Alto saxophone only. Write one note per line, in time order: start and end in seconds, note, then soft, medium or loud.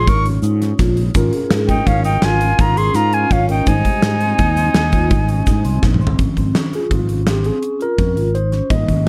0.08 0.25 A#4 medium
1.70 1.89 D#4 medium
1.87 2.04 C#4 medium
2.05 2.25 D#4 medium
2.23 2.60 F4 medium
2.60 2.79 F4 medium
2.77 2.97 G#4 medium
2.95 3.15 F4 medium
3.15 3.34 F4 medium
3.33 3.50 C#4 medium
3.51 3.67 D#4 medium
3.67 5.83 D#4 medium